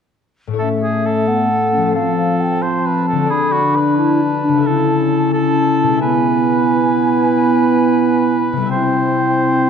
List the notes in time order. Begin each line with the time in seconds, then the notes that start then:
0.47 A2 A3
0.53 E4 C#5
0.59 A3 C#4 A4 E5
0.82 G#4
1.06 A4
1.27 B3 F#5
1.51 A3
1.73 F3 C#4
1.81 A3
1.86 F4
1.91 C5 F5
1.95 F3 C4 A4
2.17 F5
2.40 G5
2.62 C4 C5 A5
2.86 B4
3.08 A4
3.12 D3
3.17 A3
3.21 F#4
3.26 D5
3.30 D4 G#4 B5
3.52 F#4
3.76 B4
3.97 E4 A5
4.22 D4
4.44 D4
4.49 C#3
4.53 A3
4.58 E4
4.62 E5
4.66 C#4 E4 A4
5.33 E4 A4 A5
5.83 B2
5.88 G#3
5.92 E4
5.97 E5 G#5
6.01 B3 E4 B4
8.53 C3
8.57 G3
8.62 E4
8.66 E5 G5
8.70 C4 E4 C5